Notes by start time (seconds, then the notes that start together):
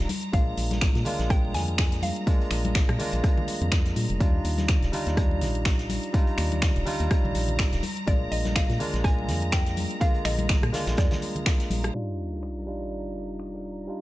Already playing: A#5
0.09 closed hi-hat, open hi-hat, high conga
0.23 closed hi-hat
0.32 A#1 G#3 A#3 D4 F4 F5, kick, closed hi-hat
0.57 A#1, closed hi-hat, open hi-hat
0.71 snare, closed hi-hat, high conga
0.81 finger snap, kick, snare, closed hi-hat
0.95 A#2, snare, closed hi-hat
1.05 G#3 A#3 D4 F4, closed hi-hat, open hi-hat, low conga
1.19 A#1, snare, closed hi-hat
1.30 G5, kick, cross-stick, closed hi-hat
1.45 high conga
1.54 F2 G#5, snare, closed hi-hat, open hi-hat, low conga
1.68 closed hi-hat
1.78 finger snap, kick, snare, closed hi-hat
1.92 snare, closed hi-hat
2.02 F5, closed hi-hat, open hi-hat, high conga
2.16 closed hi-hat
2.26 G#3 A#3 D4 F4, kick, closed hi-hat
2.41 closed hi-hat
2.51 A#1, finger snap, closed hi-hat, open hi-hat
2.65 closed hi-hat, high conga
2.75 finger snap, kick, snare, closed hi-hat
2.89 A#2, cross-stick, closed hi-hat
2.98 G#3 A#3 D4 F4, open hi-hat, low conga
3.12 A#1, closed hi-hat
3.24 kick, cross-stick, closed hi-hat
3.37 high conga, low conga
3.48 closed hi-hat, open hi-hat
3.62 F2, closed hi-hat, low conga
3.72 finger snap, kick, snare, closed hi-hat
3.86 snare, closed hi-hat
3.96 A#2, closed hi-hat, open hi-hat, high conga
4.10 F1, closed hi-hat
4.19 D#2 G3 D4 D#4 F4 A#5, kick, closed hi-hat
4.45 D#2, closed hi-hat, open hi-hat
4.58 snare, closed hi-hat, high conga
4.68 finger snap, kick, snare, closed hi-hat
4.82 D#1, snare, closed hi-hat
4.92 G3 D4 D#4 F4, closed hi-hat, open hi-hat, low conga
5.07 D#2, snare, closed hi-hat
5.17 kick, cross-stick, closed hi-hat
5.31 high conga
5.41 A#1, snare, closed hi-hat, open hi-hat, low conga
5.55 closed hi-hat
5.65 finger snap, kick, snare, closed hi-hat
5.79 snare, closed hi-hat
5.90 closed hi-hat, open hi-hat, high conga
6.03 closed hi-hat
6.13 G3 D4 D#4 F4, kick, closed hi-hat
6.27 closed hi-hat
6.38 D#2, finger snap, closed hi-hat, open hi-hat
6.52 closed hi-hat, high conga
6.62 finger snap, kick, snare, closed hi-hat
6.76 D#1, closed hi-hat
6.85 G3 D4 D#4 F4, open hi-hat, low conga
7.00 D#2, closed hi-hat
7.11 kick, cross-stick, closed hi-hat
7.24 A#1, high conga, low conga
7.35 A#1, closed hi-hat, open hi-hat
7.48 closed hi-hat, low conga
7.59 finger snap, kick, snare, closed hi-hat
7.73 D#1, snare, closed hi-hat
7.83 closed hi-hat, open hi-hat, high conga
7.97 closed hi-hat
8.06 A#1 G#3 A#3 D4 F4 D5, kick, closed hi-hat
8.32 A#1 D#5, closed hi-hat, open hi-hat
8.45 snare, closed hi-hat, high conga
8.56 F5, finger snap, kick, snare, closed hi-hat
8.70 A#2, snare, closed hi-hat
8.79 G#3 A#3 D4 F4, closed hi-hat, open hi-hat, low conga
8.94 A#1, snare, closed hi-hat
9.04 G#5, kick, cross-stick, closed hi-hat
9.19 high conga
9.28 F2, snare, closed hi-hat, open hi-hat, low conga
9.42 closed hi-hat
9.52 G5, finger snap, kick, snare, closed hi-hat
9.66 snare, closed hi-hat
9.77 closed hi-hat, open hi-hat, high conga
9.91 closed hi-hat
10.00 D3 G#3 A#3 F4 F5, kick, closed hi-hat
10.14 closed hi-hat
10.25 A#1 D#5, finger snap, closed hi-hat, open hi-hat
10.38 closed hi-hat, high conga
10.49 finger snap, kick, snare, closed hi-hat
10.63 A#2, cross-stick, closed hi-hat
10.73 G#3 A#3 D4 F4, snare, closed hi-hat, open hi-hat, low conga
10.87 A#1, snare, closed hi-hat
10.97 F2 D5, kick, cross-stick, snare, closed hi-hat
11.11 snare, closed hi-hat, high conga, low conga
11.22 closed hi-hat, open hi-hat
11.36 closed hi-hat, low conga
11.46 finger snap, kick, snare, closed hi-hat
11.60 snare, closed hi-hat
11.70 A#1, closed hi-hat, open hi-hat, high conga
11.84 cross-stick, closed hi-hat
11.94 G3 D4 D#4 F4 A#5, closed hi-hat, crash, sub drop
12.19 closed hi-hat
12.32 snare
12.43 finger snap, closed hi-hat
12.57 snare
12.66 G3 D4 D#4 F4, closed hi-hat
12.81 snare
12.91 closed hi-hat
13.16 snare, closed hi-hat
13.40 finger snap, closed hi-hat
13.54 snare
13.64 closed hi-hat
13.87 G3 D4 D#4 F4, closed hi-hat